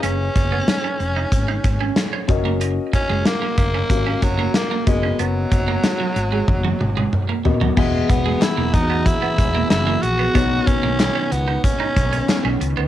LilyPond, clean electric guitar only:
\new Staff \with { instrumentName = "Clean electric guitar" } { \time 4/4 \key b \lydian \tempo 4 = 93 cis'16 r8 b16 r16 cis'16 r16 dis'16 r16 dis'16 r16 cis'16 r16 cis'16 r16 ais16 | dis'16 r8 gis16 r16 ais16 r16 cis'16 r16 cis'16 r16 ais16 r16 ais16 r16 cis'16 | b16 r8 ais16 r16 fis16 r16 gis16 r16 fis16 r16 gis16 r16 ais16 r16 fis16 | e16 r8 gis16 r16 ais16 r16 b16 r16 b16 r16 ais16 r16 ais16 r16 b16 |
b16 r8 ais16 r16 cis'16 r16 dis'16 r16 dis'16 r16 cis'16 r16 cis'16 r16 b16 | }